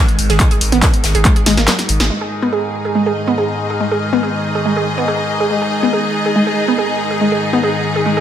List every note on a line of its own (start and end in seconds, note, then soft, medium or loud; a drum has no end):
0.00 2.09 G#2 medium
0.00 2.09 D#3 medium
0.09 closed hi-hat medium
0.19 0.29 G#1 loud
0.19 closed hi-hat medium
0.19 open hi-hat medium
0.29 0.40 G#1 medium
0.29 0.35 G#4 medium
0.29 snare medium
0.29 closed hi-hat medium
0.40 0.43 G#3 medium
0.40 kick loud
0.40 clap loud
0.40 closed hi-hat loud
0.40 closed hi-hat medium
0.51 0.56 G#4 medium
0.51 closed hi-hat medium
0.51 closed hi-hat soft
0.61 0.72 G#1 loud
0.61 closed hi-hat medium
0.61 open hi-hat loud
0.72 0.82 G#1 medium
0.72 0.77 B3 loud
0.72 closed hi-hat medium
0.82 0.88 G#4 medium
0.82 kick loud
0.82 snare loud
0.82 clap loud
0.82 closed hi-hat medium
0.94 closed hi-hat medium
1.04 1.14 G#1 loud
1.04 snare loud
1.04 closed hi-hat medium
1.04 open hi-hat medium
1.15 1.25 G#1 medium
1.15 1.20 G#4 medium
1.15 closed hi-hat medium
1.25 1.28 G#3 medium
1.25 kick loud
1.25 clap loud
1.25 closed hi-hat medium
1.25 closed hi-hat loud
1.36 1.41 G#4 medium
1.36 closed hi-hat medium
1.46 1.57 G#1 loud
1.46 1.52 G#3 loud
1.46 snare medium
1.46 snare soft
1.46 closed hi-hat medium
1.46 open hi-hat loud
1.57 1.67 G#1 medium
1.57 1.60 A#3 medium
1.57 snare medium
1.57 closed hi-hat medium
1.67 1.73 F#3 medium
1.67 snare loud
1.67 snare medium
1.67 clap loud
1.67 closed hi-hat medium
1.79 snare medium
1.79 closed hi-hat soft
1.89 1.99 G#1 medium
1.89 closed hi-hat medium
1.89 open hi-hat medium
2.00 2.10 G#1 medium
2.00 2.05 G#3 medium
2.00 snare medium
2.00 snare soft
2.00 closed hi-hat soft
2.10 8.20 G#2 medium
2.10 8.20 D#3 medium
2.10 2.13 G#3 medium
2.10 8.20 D#4 medium
2.10 closed hi-hat medium
2.21 2.26 G#4 medium
2.21 8.20 G#4 medium
2.31 closed hi-hat medium
2.31 tambourine medium
2.42 2.47 B3 loud
2.53 2.58 G#4 medium
2.53 closed hi-hat medium
2.64 closed hi-hat medium
2.74 closed hi-hat medium
2.74 tambourine medium
2.85 2.90 G#4 medium
2.85 closed hi-hat medium
2.95 2.98 G#3 medium
2.95 8.20 D#5 medium
2.95 closed hi-hat medium
2.95 tambourine soft
3.06 3.11 G#4 medium
3.16 closed hi-hat medium
3.16 tambourine medium
3.28 3.32 B3 loud
3.38 3.43 G#4 medium
3.38 closed hi-hat medium
3.38 tambourine soft
3.49 closed hi-hat soft
3.59 closed hi-hat medium
3.59 tambourine medium
3.70 3.75 G#4 medium
3.80 3.84 G#3 medium
3.80 closed hi-hat loud
3.80 tambourine soft
3.91 3.96 G#4 medium
3.91 closed hi-hat medium
4.02 closed hi-hat medium
4.02 tambourine medium
4.13 4.18 B3 loud
4.23 4.28 G#4 medium
4.23 closed hi-hat medium
4.34 closed hi-hat medium
4.44 closed hi-hat medium
4.44 tambourine medium
4.55 4.60 G#4 medium
4.55 closed hi-hat medium
4.65 4.69 G#3 medium
4.65 closed hi-hat medium
4.76 4.81 G#4 medium
4.87 closed hi-hat medium
4.98 5.03 B3 loud
5.08 5.13 G#4 medium
5.08 closed hi-hat medium
5.19 closed hi-hat medium
5.29 closed hi-hat medium
5.29 tambourine medium
5.40 5.45 G#4 medium
5.40 closed hi-hat medium
5.51 5.54 G#3 medium
5.51 closed hi-hat medium
5.62 5.67 G#4 medium
5.72 closed hi-hat medium
5.72 tambourine medium
5.83 5.88 B3 loud
5.83 closed hi-hat medium
5.93 5.98 G#4 medium
5.93 closed hi-hat medium
5.93 tambourine soft
6.14 closed hi-hat medium
6.14 tambourine medium
6.25 6.30 G#4 medium
6.25 closed hi-hat medium
6.36 6.39 G#3 medium
6.36 closed hi-hat medium
6.47 6.52 G#4 medium
6.47 closed hi-hat soft
6.57 closed hi-hat medium
6.57 tambourine medium
6.68 6.73 B3 loud
6.68 closed hi-hat medium
6.78 6.84 G#4 medium
6.78 closed hi-hat medium
6.89 closed hi-hat medium
6.99 closed hi-hat medium
6.99 tambourine medium
7.11 7.15 G#4 medium
7.11 closed hi-hat medium
7.21 7.24 G#3 medium
7.21 closed hi-hat medium
7.32 7.37 G#4 medium
7.32 closed hi-hat soft
7.42 closed hi-hat medium
7.42 tambourine medium
7.53 7.58 B3 loud
7.53 closed hi-hat soft
7.63 7.69 G#4 medium
7.63 closed hi-hat medium
7.63 tambourine soft
7.74 closed hi-hat medium
7.84 closed hi-hat medium
7.84 tambourine medium
7.96 8.01 G#4 medium
7.96 closed hi-hat soft
8.06 8.09 G#3 medium
8.06 closed hi-hat medium
8.06 tambourine soft
8.17 8.20 G#4 medium
8.17 closed hi-hat soft